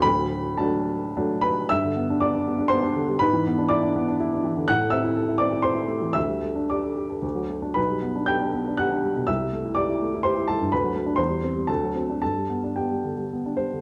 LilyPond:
<<
  \new Staff \with { instrumentName = "Upright piano" } { \time 3/4 \key g \major \tempo 4 = 119 b''4 a''4. <b' b''>8 | <e'' e'''>4 <d'' d'''>4 <c'' c'''>4 | <b' b''>4 <d'' d'''>4 r4 | <fis'' fis'''>8 <e'' e'''>4 <d'' d'''>8 <c'' c'''>4 |
<e'' e'''>4 <d'' d'''>4. r8 | <b' b''>4 <g'' g'''>4 <fis'' fis'''>4 | <e'' e'''>4 <d'' d'''>4 <c'' c'''>8 <a' a''>8 | <b' b''>4 <c'' c'''>4 <a' a''>4 |
<a' a''>4 <g' g''>4. c''8 | }
  \new Staff \with { instrumentName = "Upright piano" } { \time 3/4 \key g \major <d,, d,>4 <fis a d'>4 <fis a d'>4 | g,16 d16 b16 d'16 b16 d'16 b16 d'16 b16 d'16 d16 g16 | gis,16 e16 b16 d'16 e'16 d'16 b16 d'16 e'16 d'16 e16 d16 | a,16 a16 c'16 e'16 a'16 e'16 c'16 e'16 a'16 e'16 a16 e16 |
d,16 g16 a16 d'16 g'8 g'16 a'16 d,16 fis16 a16 d'16 | b,,16 g16 b16 d'16 g'16 d'16 b16 d'16 g'16 d'16 g16 b,16 | c,16 g16 a16 e'16 g'16 e'16 a16 e'16 g'16 e'16 g16 g,16 | d,16 fis16 a16 d'16 e,16 g16 c'16 g16 d,16 fis16 c'16 d'16 |
g,16 g16 b16 d'16 b16 g16 d16 g16 b16 d'16 g16 d16 | }
>>